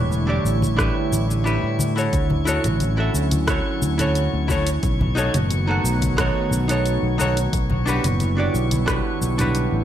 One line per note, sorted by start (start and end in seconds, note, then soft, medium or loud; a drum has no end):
0.00 0.39 E1 medium
0.00 4.79 D3 medium
0.00 2.10 G3 medium
0.00 2.09 A3 medium
0.00 4.79 E4 medium
0.00 9.84 C#5 medium
0.00 9.84 C#6 medium
0.11 high conga medium
0.11 shaker soft
0.27 0.56 D4 medium
0.27 0.57 E4 medium
0.27 0.57 G4 medium
0.27 0.58 D5 medium
0.45 0.90 A1 medium
0.45 shaker medium
0.62 kick medium
0.62 high conga medium
0.62 shaker soft
0.76 1.25 D4 medium
0.76 1.25 E4 medium
0.76 1.26 G4 medium
0.76 1.26 B4 medium
0.76 kick loud
0.76 cross-stick medium
0.76 shaker soft
1.12 1.57 A1 medium
1.12 high conga medium
1.12 shaker medium
1.31 shaker soft
1.44 1.92 D4 medium
1.44 1.93 E4 medium
1.44 1.93 G4 medium
1.44 1.94 B4 medium
1.44 shaker soft
1.63 2.07 A2 medium
1.79 high conga medium
1.79 shaker medium
1.96 2.25 E4 medium
1.96 2.26 F#4 medium
1.96 2.26 A4 medium
1.96 2.27 C#5 medium
1.96 shaker soft
2.13 2.58 D2 loud
2.13 4.81 F#3 medium
2.13 4.81 C#4 medium
2.13 kick loud
2.13 closed hi-hat soft
2.13 shaker soft
2.30 high conga medium
2.30 low conga medium
2.45 2.65 E4 medium
2.45 2.66 F#4 medium
2.45 2.66 A4 medium
2.45 2.66 C#5 loud
2.45 shaker medium
2.64 3.08 A1 medium
2.64 closed hi-hat soft
2.64 mid tom medium
2.64 shaker soft
2.80 closed hi-hat soft
2.80 high conga medium
2.80 shaker soft
2.97 3.26 E4 medium
2.97 3.27 F#4 medium
2.97 3.27 A4 medium
2.97 3.28 E5 medium
3.14 3.59 D2 medium
3.14 shaker medium
3.31 closed hi-hat soft
3.31 high conga medium
3.31 shaker soft
3.47 3.95 E4 medium
3.47 3.95 F#4 medium
3.47 3.96 A4 medium
3.47 3.96 C#5 medium
3.47 kick loud
3.47 cross-stick medium
3.47 closed hi-hat soft
3.47 shaker soft
3.82 4.27 D2 medium
3.82 high conga medium
3.82 shaker medium
3.98 4.45 E4 medium
3.98 4.45 F#4 medium
3.98 4.46 A4 medium
3.98 4.46 C#5 medium
3.98 closed hi-hat soft
3.98 low conga medium
3.98 shaker soft
4.15 closed hi-hat soft
4.15 shaker soft
4.34 4.77 D2 medium
4.48 4.67 E4 medium
4.48 4.68 F#4 medium
4.48 4.69 A4 medium
4.48 4.69 C#5 loud
4.48 kick medium
4.48 high conga medium
4.48 shaker medium
4.67 closed hi-hat medium
4.67 shaker soft
4.83 5.28 B1 medium
4.83 7.50 D#3 medium
4.83 7.50 A3 medium
4.83 7.50 B3 medium
4.83 7.50 F#4 medium
4.83 kick loud
4.83 closed hi-hat soft
4.83 shaker soft
5.01 high conga medium
5.01 low conga medium
5.15 5.35 D#4 medium
5.15 5.35 F#4 medium
5.15 5.36 A4 medium
5.15 5.36 C#5 loud
5.15 shaker medium
5.34 5.78 F#1 medium
5.34 closed hi-hat medium
5.34 mid tom medium
5.34 shaker soft
5.51 closed hi-hat soft
5.51 high conga medium
5.51 shaker soft
5.67 5.96 D#4 medium
5.67 5.97 F#4 medium
5.67 5.97 A4 medium
5.67 5.98 F#5 medium
5.84 6.29 B1 medium
5.84 shaker medium
6.02 kick medium
6.02 closed hi-hat soft
6.02 high conga medium
6.02 shaker soft
6.17 6.64 D#4 medium
6.17 6.65 F#4 medium
6.17 6.65 A4 medium
6.17 6.66 C#5 medium
6.17 kick loud
6.17 cross-stick medium
6.17 closed hi-hat soft
6.17 shaker soft
6.51 6.96 B1 medium
6.51 high conga medium
6.51 shaker medium
6.68 7.14 D#4 medium
6.68 7.15 F#4 medium
6.68 7.16 A4 medium
6.68 7.16 C#5 medium
6.68 closed hi-hat medium
6.68 shaker soft
6.86 closed hi-hat soft
6.86 shaker soft
7.03 7.47 B1 medium
7.18 7.37 D#4 medium
7.18 7.38 F#4 medium
7.18 7.38 A4 medium
7.18 7.39 C#5 loud
7.18 high conga medium
7.18 shaker medium
7.37 closed hi-hat medium
7.37 shaker soft
7.53 7.98 B1 medium
7.53 9.84 D3 medium
7.53 9.84 G3 medium
7.53 9.84 B3 medium
7.53 9.84 E4 medium
7.53 kick loud
7.53 closed hi-hat soft
7.53 shaker soft
7.70 high conga medium
7.70 low conga medium
7.86 8.05 D4 medium
7.86 8.05 F#4 medium
7.86 8.06 G4 medium
7.86 8.06 B4 loud
7.86 shaker medium
8.04 8.48 F#1 medium
8.04 closed hi-hat medium
8.04 mid tom medium
8.04 shaker soft
8.20 closed hi-hat soft
8.20 high conga medium
8.20 shaker soft
8.37 8.66 D4 medium
8.37 8.66 F#4 medium
8.37 8.67 G4 medium
8.37 8.67 D5 medium
8.54 8.99 B1 medium
8.54 shaker medium
8.71 closed hi-hat medium
8.71 high conga medium
8.71 shaker soft
8.86 9.34 D4 medium
8.86 9.34 F#4 medium
8.86 9.35 G4 medium
8.86 9.35 B4 medium
8.86 kick loud
8.86 cross-stick medium
8.86 closed hi-hat soft
8.86 shaker soft
9.21 9.66 B1 medium
9.21 high conga medium
9.21 shaker medium
9.38 9.84 D4 medium
9.38 9.84 F#4 medium
9.38 9.84 G4 medium
9.38 9.84 B4 medium
9.38 closed hi-hat medium
9.38 low conga medium
9.38 shaker soft
9.55 closed hi-hat soft
9.55 shaker soft
9.72 9.84 A1 medium